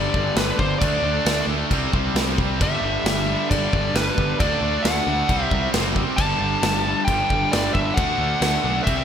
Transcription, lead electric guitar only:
Already playing: D5
0.37 B4
0.60 C5
0.79 D5
2.62 E5
3.50 D5
3.95 B4
4.40 D5
4.83 F#5
5.45 E5
6.17 A5
7.05 G5
7.52 D5
7.74 E5
7.94 F#5
8.84 E5

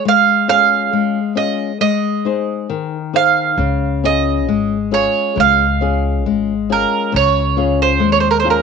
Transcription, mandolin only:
0.08 F5
0.49 F5
1.37 D#5
1.81 D#5
3.16 F5
4.05 D#5
4.94 C#5
5.40 F5
6.72 A#4
7.16 C#5
7.82 C5
8.12 C#5
8.20 C5
8.31 A#4
8.40 C5
8.50 A#4

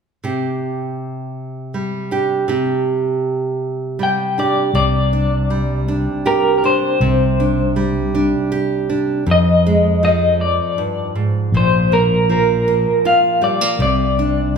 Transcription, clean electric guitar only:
4.03 G5
4.40 D5
4.75 D5
6.27 A#4
6.58 A#4
6.66 C5
9.31 D#5
10.05 D#5
10.41 D5
11.57 C5
11.93 A#4
12.32 A#4
13.07 F5
13.44 D5
13.82 D5

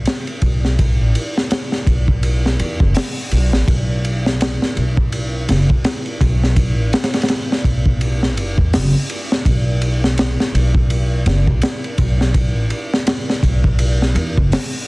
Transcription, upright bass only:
0.42 B1
1.00 A1
1.87 B1
2.59 E2
2.81 F#1
3.32 B1
3.53 A1
3.68 B1
4.77 B1
5.49 F#1
5.70 B1
6.21 B1
6.78 A1
7.64 B1
8.38 F#1
8.58 E2
8.74 F#1
9.46 B1
10.54 B1
11.26 F#1
11.47 B1
11.98 B1
12.56 A1
13.43 B1
14.15 E2
14.38 F#1

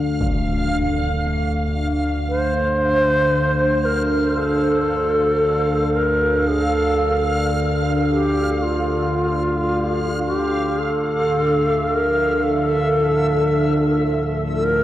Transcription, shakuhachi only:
2.29 C5
3.85 A#4
4.38 A4
5.95 A#4
6.48 G#4
6.64 A4
8.11 G4
8.62 F4
10.27 G4
10.79 A4
11.88 A#4
12.43 A4
14.56 A#4

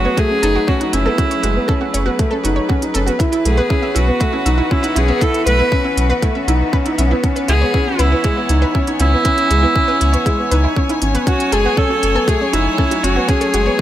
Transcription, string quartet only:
Already playing: F#3 A3 G#4 B4
3.20 E3
3.47 B3 F#4
7.53 G#5
8.09 C#5
11.27 F#3
11.53 A3

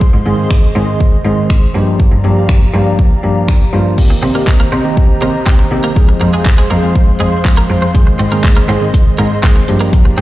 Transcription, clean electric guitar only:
4.10 muted clean electric guitar stroke
4.23 C4
4.35 A#3
4.48 muted clean electric guitar stroke
4.60 A#3
4.72 C4
5.22 A#3
5.47 C4
5.59 muted clean electric guitar stroke
5.84 A#3
6.09 muted clean electric guitar stroke
6.21 A#3
6.33 G#3
6.46 muted clean electric guitar stroke
6.58 G#3
6.71 A#3
7.20 G#3
7.57 A#3
7.70 muted clean electric guitar stroke
7.82 C4
8.07 muted clean electric guitar stroke
8.19 C4
8.32 A#3
8.44 muted clean electric guitar stroke
8.57 A#3
8.69 C4
9.19 A#3
9.43 C4
9.56 muted clean electric guitar stroke
9.81 A#3
10.05 muted clean electric guitar stroke
10.18 C4

